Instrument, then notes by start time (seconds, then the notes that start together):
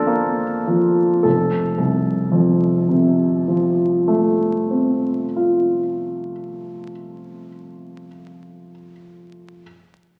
grand piano
Already playing: F2 D3 A#3 D4 A4 A#4 C5
0.07 A#3
0.67 F3
1.23 F1 A4
1.78 C2
2.32 F2
2.89 C3
3.48 F3
4.08 A3
4.71 C4
5.36 F4